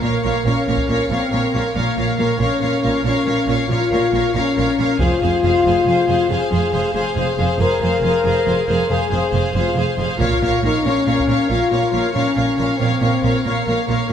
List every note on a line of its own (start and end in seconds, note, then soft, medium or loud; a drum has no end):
0.00 0.11 A#1 soft
0.00 0.11 A#2 soft
0.00 0.44 A#3 medium
0.00 0.22 A#4 soft
0.00 0.20 C#5 soft
0.00 0.23 F5 soft
0.21 0.32 A#1 soft
0.21 0.33 A#2 soft
0.21 0.44 A#4 soft
0.21 0.43 C#5 soft
0.21 0.45 F5 soft
0.44 0.52 A#1 soft
0.44 0.54 A#2 soft
0.44 1.10 C#4 medium
0.44 0.66 A#4 soft
0.44 0.66 C#5 soft
0.44 0.66 F5 soft
0.67 0.75 A#1 soft
0.67 0.76 A#2 soft
0.67 0.88 A#4 soft
0.67 0.86 C#5 soft
0.67 0.88 F5 soft
0.77 taiko soft
0.87 0.96 A#1 soft
0.87 0.97 A#2 soft
0.87 1.09 A#4 soft
0.87 1.09 C#5 soft
0.87 1.09 F5 soft
1.09 1.17 A#1 soft
1.09 1.19 A#2 soft
1.09 1.57 C4 medium
1.09 1.30 A#4 soft
1.09 1.30 C#5 soft
1.09 1.30 F5 soft
1.31 1.39 A#1 soft
1.31 1.41 A#2 soft
1.31 1.53 A#4 soft
1.31 1.52 C#5 soft
1.31 1.52 F5 soft
1.53 1.61 A#1 soft
1.53 1.62 A#2 soft
1.53 1.74 A#4 soft
1.53 1.74 C#5 soft
1.53 1.72 F5 soft
1.74 1.84 A#1 soft
1.74 1.83 A#2 soft
1.74 2.38 A#3 medium
1.74 1.96 A#4 soft
1.74 1.96 C#5 soft
1.74 1.95 F5 soft
1.96 2.05 A#1 soft
1.96 2.05 A#2 soft
1.96 2.17 A#4 soft
1.96 2.18 C#5 soft
1.96 2.15 F5 soft
2.17 2.26 A#1 soft
2.17 2.27 A#2 soft
2.17 2.39 A#4 soft
2.17 2.39 C#5 soft
2.17 2.39 F5 soft
2.38 2.47 A#1 soft
2.38 2.48 A#2 soft
2.38 3.02 C#4 medium
2.38 2.60 A#4 soft
2.38 2.60 C#5 soft
2.38 2.58 F5 medium
2.60 2.69 A#1 soft
2.60 2.70 A#2 soft
2.60 2.81 A#4 soft
2.60 2.82 C#5 soft
2.60 2.81 F5 soft
2.82 2.91 A#1 soft
2.82 2.92 A#2 soft
2.82 3.04 A#4 soft
2.82 3.04 C#5 soft
2.82 3.03 F5 soft
3.04 3.12 A#1 medium
3.04 3.13 A#2 soft
3.04 3.68 C#4 medium
3.04 3.25 A#4 soft
3.04 3.25 C#5 soft
3.04 3.26 F5 soft
3.26 3.34 A#1 soft
3.26 3.35 A#2 soft
3.26 3.47 A#4 soft
3.26 3.47 C#5 soft
3.26 3.47 F5 soft
3.48 3.56 A#1 soft
3.48 3.56 A#2 medium
3.48 3.68 A#4 soft
3.48 3.69 C#5 soft
3.48 3.69 F5 soft
3.68 3.77 A#1 soft
3.68 3.78 A#2 medium
3.68 4.33 F4 medium
3.68 3.89 A#4 soft
3.68 3.91 C#5 soft
3.68 3.91 F5 soft
3.91 3.99 A#1 medium
3.91 4.00 A#2 soft
3.91 4.10 A#4 soft
3.91 4.13 C#5 soft
3.91 4.11 F5 soft
4.12 4.21 A#1 soft
4.12 4.21 A#2 soft
4.12 4.32 A#4 soft
4.12 4.33 C#5 soft
4.12 4.33 F5 soft
4.34 4.43 A#1 medium
4.34 4.43 A#2 soft
4.34 4.99 C#4 medium
4.34 4.54 A#4 soft
4.34 4.55 C#5 soft
4.34 4.55 F5 soft
4.56 4.65 A#1 medium
4.56 4.65 A#2 soft
4.56 4.76 A#4 soft
4.56 4.77 C#5 soft
4.56 4.76 F5 soft
4.77 4.86 A#1 medium
4.77 4.87 A#2 medium
4.77 4.99 A#4 soft
4.77 4.99 C#5 soft
4.77 4.98 F5 soft
4.99 5.08 F1 medium
4.99 5.09 F2 medium
4.99 6.27 F4 medium
4.99 5.20 G#4 medium
4.99 5.20 C5 medium
4.99 5.19 F5 medium
4.99 taiko medium
5.21 5.30 F1 soft
5.21 5.30 F2 medium
5.21 5.41 G#4 soft
5.21 5.42 C5 soft
5.21 5.41 F5 soft
5.42 5.52 F1 medium
5.42 5.51 F2 medium
5.42 5.64 G#4 soft
5.42 5.64 C5 soft
5.42 5.64 F5 soft
5.64 5.73 F1 medium
5.64 5.72 F2 medium
5.64 5.85 G#4 soft
5.64 5.86 C5 soft
5.64 5.86 F5 soft
5.86 5.95 F1 soft
5.86 5.94 F2 medium
5.86 6.06 G#4 soft
5.86 6.06 C5 soft
5.86 6.08 F5 soft
6.08 6.17 F1 soft
6.08 6.16 F2 medium
6.08 6.29 G#4 soft
6.08 6.29 C5 soft
6.08 6.29 F5 soft
6.29 6.38 F1 medium
6.29 6.37 F2 medium
6.29 6.50 G#4 soft
6.29 6.94 G#4 medium
6.29 6.50 C5 soft
6.29 6.51 F5 medium
6.51 6.60 F1 soft
6.51 6.59 F2 medium
6.51 6.71 G#4 soft
6.51 6.71 C5 soft
6.51 6.72 F5 soft
6.72 6.82 F1 medium
6.72 6.80 F2 soft
6.72 6.93 G#4 soft
6.72 6.93 C5 soft
6.72 6.93 F5 soft
6.94 7.03 F1 medium
6.94 7.03 F2 medium
6.94 7.14 G#4 soft
6.94 7.59 G#4 medium
6.94 7.16 C5 medium
6.94 7.16 F5 soft
7.15 7.25 F1 medium
7.15 7.24 F2 soft
7.15 7.35 G#4 soft
7.15 7.38 C5 soft
7.15 7.36 F5 soft
7.36 7.46 F1 medium
7.36 7.47 F2 medium
7.36 7.58 G#4 soft
7.36 7.60 C5 soft
7.36 7.57 F5 soft
7.58 7.67 F1 medium
7.58 7.68 F2 medium
7.58 7.80 G#4 medium
7.58 8.90 A#4 medium
7.58 7.82 C5 medium
7.58 7.80 F5 medium
7.81 7.89 F1 soft
7.81 7.90 F2 medium
7.81 8.01 G#4 soft
7.81 8.02 C5 medium
7.81 8.01 F5 soft
8.01 8.09 F1 medium
8.01 8.11 F2 medium
8.01 8.24 G#4 soft
8.01 8.25 C5 soft
8.01 8.24 F5 soft
8.24 8.32 F1 medium
8.24 8.33 F2 medium
8.24 8.44 G#4 soft
8.24 8.44 C5 medium
8.24 8.46 F5 medium
8.45 8.55 F1 soft
8.45 8.54 F2 soft
8.45 8.67 G#4 soft
8.45 8.66 C5 soft
8.45 8.68 F5 soft
8.67 8.76 F1 medium
8.67 8.77 F2 medium
8.67 8.89 G#4 soft
8.67 8.89 C5 soft
8.67 8.89 F5 soft
8.90 8.98 F1 medium
8.90 8.98 F2 medium
8.90 9.10 G#4 soft
8.90 9.37 G#4 medium
8.90 9.09 C5 soft
8.90 9.10 F5 medium
9.10 9.19 F1 medium
9.10 9.20 F2 medium
9.10 9.32 G#4 soft
9.10 9.30 C5 soft
9.10 9.30 F5 soft
9.31 9.41 F1 medium
9.31 9.41 F2 medium
9.31 9.54 G#4 soft
9.31 9.53 C5 soft
9.31 9.53 F5 soft
9.54 9.62 F1 medium
9.54 9.63 F2 medium
9.54 9.75 F4 medium
9.54 9.75 G#4 soft
9.54 9.76 C5 soft
9.54 9.76 F5 medium
9.76 9.84 F1 soft
9.76 9.84 F2 medium
9.76 9.98 G#4 soft
9.76 9.96 C5 soft
9.76 9.97 F5 soft
9.98 10.06 F1 medium
9.98 10.06 F2 medium
9.98 10.20 G#4 soft
9.98 10.19 C5 soft
9.98 10.19 F5 soft
10.18 10.28 A#1 medium
10.18 10.27 A#2 medium
10.18 10.59 F4 medium
10.18 10.40 A#4 soft
10.18 10.41 C#5 medium
10.18 10.41 F5 medium
10.18 taiko medium
10.41 10.50 A#1 soft
10.41 10.49 A#2 medium
10.41 10.62 A#4 soft
10.41 10.63 C#5 soft
10.41 10.62 F5 soft
10.63 10.72 A#1 medium
10.63 10.71 A#2 soft
10.63 10.85 D#4 medium
10.63 10.83 A#4 soft
10.63 10.85 C#5 soft
10.63 10.82 F5 soft
10.83 10.93 A#1 medium
10.83 10.93 A#2 medium
10.83 11.50 C#4 medium
10.83 11.05 A#4 soft
10.83 11.06 C#5 soft
10.83 11.04 F5 soft
11.06 11.14 A#1 soft
11.06 11.15 A#2 soft
11.06 11.26 A#4 soft
11.06 11.28 C#5 soft
11.06 11.27 F5 soft
11.18 taiko soft
11.27 11.36 A#1 soft
11.27 11.36 A#2 soft
11.27 11.47 A#4 soft
11.27 11.49 C#5 soft
11.27 11.48 F5 soft
11.48 11.58 A#1 soft
11.48 11.57 A#2 soft
11.48 12.15 F4 medium
11.48 11.70 A#4 soft
11.48 11.70 C#5 soft
11.48 11.70 F5 soft
11.71 11.80 A#1 soft
11.71 11.79 A#2 soft
11.71 11.92 A#4 soft
11.71 11.91 C#5 soft
11.71 11.91 F5 soft
11.92 12.01 A#1 soft
11.92 12.01 A#2 soft
11.92 12.13 A#4 soft
11.92 12.12 C#5 soft
11.92 12.12 F5 soft
12.13 12.23 A#1 soft
12.13 12.22 A#2 soft
12.13 12.78 C#4 medium
12.13 12.34 A#4 soft
12.13 12.35 C#5 soft
12.13 12.35 F5 soft
12.35 12.45 A#1 soft
12.35 12.44 A#2 soft
12.35 12.56 A#4 soft
12.35 12.55 C#5 soft
12.35 12.56 F5 soft
12.56 12.66 A#1 soft
12.56 12.66 A#2 soft
12.56 12.78 A#4 soft
12.56 12.77 C#5 soft
12.56 12.79 F5 soft
12.77 12.88 A#1 soft
12.77 12.88 A#2 soft
12.77 13.43 C4 medium
12.77 12.99 A#4 soft
12.77 13.00 C#5 soft
12.77 13.00 F5 soft
13.00 13.10 A#1 soft
13.00 13.09 A#2 soft
13.00 13.21 A#4 soft
13.00 13.22 C#5 soft
13.00 13.22 F5 soft
13.22 13.31 A#1 soft
13.22 13.31 A#2 soft
13.22 13.42 A#4 soft
13.22 13.44 C#5 soft
13.22 13.44 F5 soft
13.43 13.53 A#1 soft
13.43 13.53 A#2 soft
13.43 14.13 A#3 medium
13.43 13.64 A#4 soft
13.43 13.66 C#5 soft
13.43 13.66 F5 soft
13.66 13.75 A#1 soft
13.66 13.75 A#2 soft
13.66 13.86 A#4 soft
13.66 13.87 C#5 soft
13.66 13.87 F5 soft
13.87 13.96 A#1 soft
13.87 13.96 A#2 soft
13.87 14.07 A#4 soft
13.87 14.09 C#5 soft
13.87 14.09 F5 soft
14.08 14.13 A#1 soft
14.08 14.13 A#2 soft
14.08 14.13 A#4 soft